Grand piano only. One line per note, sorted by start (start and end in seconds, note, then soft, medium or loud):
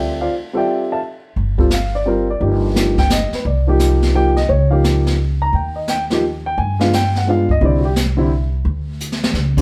0.00 0.29 G3 medium
0.00 0.29 C4 medium
0.00 0.20 F4 medium
0.00 0.18 G4 medium
0.00 0.30 A4 medium
0.00 0.19 D5 medium
0.00 0.18 E5 medium
0.00 0.18 G5 medium
0.21 0.33 F4 medium
0.21 0.33 C5 medium
0.21 0.33 D5 medium
0.21 0.32 F5 medium
0.53 0.98 G3 medium
0.53 0.99 C4 medium
0.53 0.99 F4 medium
0.53 0.88 G4 medium
0.53 0.91 A4 medium
0.53 0.88 G5 medium
0.57 0.88 D5 medium
0.57 0.88 E5 medium
0.92 0.99 A4 medium
0.92 0.99 E5 medium
0.92 0.99 F5 medium
0.92 0.99 A5 medium
1.58 1.69 G3 medium
1.58 1.70 C4 medium
1.58 1.70 F4 medium
1.58 1.70 A4 medium
1.74 1.94 F5 medium
1.95 2.06 D5 medium
2.06 2.26 G3 medium
2.06 2.26 C4 medium
2.06 2.26 F4 medium
2.06 2.27 A#4 medium
2.30 2.41 D5 medium
2.40 2.73 F3 medium
2.40 2.74 A#3 medium
2.40 2.74 D#4 medium
2.40 2.74 G4 medium
2.75 2.95 F3 medium
2.75 2.95 A#3 medium
2.75 2.95 D#4 medium
2.75 2.96 G4 medium
2.99 3.10 G5 medium
3.12 3.32 D#5 medium
3.34 3.45 B4 medium
3.46 3.67 D5 medium
3.67 4.12 F3 medium
3.67 4.12 A#3 medium
3.67 4.12 D#4 medium
3.67 4.13 G4 medium
4.14 4.34 F3 medium
4.14 4.35 A#3 medium
4.14 4.35 D#4 medium
4.14 4.35 G4 medium
4.14 4.36 G5 medium
4.37 4.48 D#5 medium
4.49 4.70 C#5 medium
4.70 5.15 F3 medium
4.70 5.16 A#3 medium
4.70 5.16 D#4 medium
4.70 5.16 G4 medium
4.70 4.83 F5 medium
5.42 5.53 A#5 loud
5.55 5.75 G5 medium
5.76 5.87 D#5 medium
5.89 6.02 G5 medium
6.11 6.22 F3 medium
6.11 6.22 A#3 medium
6.11 6.22 D#4 medium
6.11 6.23 G4 medium
6.46 6.57 G5 medium
6.58 6.79 G#5 medium
6.79 6.91 G#3 medium
6.79 6.91 B3 medium
6.79 6.91 D4 medium
6.79 6.92 F4 medium
6.79 6.92 F5 medium
6.94 7.15 G5 medium
7.17 7.28 F#5 medium
7.27 7.47 G#3 medium
7.27 7.47 B3 medium
7.27 7.47 D4 medium
7.27 7.48 F4 medium
7.27 7.50 F5 medium
7.51 7.62 D#5 medium
7.61 7.81 D3 medium
7.61 7.81 G3 medium
7.61 7.82 C4 medium
7.61 7.82 E4 medium
7.61 7.85 D5 medium
7.80 7.82 F#4 medium
7.85 7.92 G4 medium
8.17 8.29 D3 medium
8.17 8.29 G3 medium
8.17 8.29 C4 medium
8.17 8.30 E4 medium
9.57 9.61 D3 medium
9.57 9.61 G3 medium
9.57 9.61 C4 medium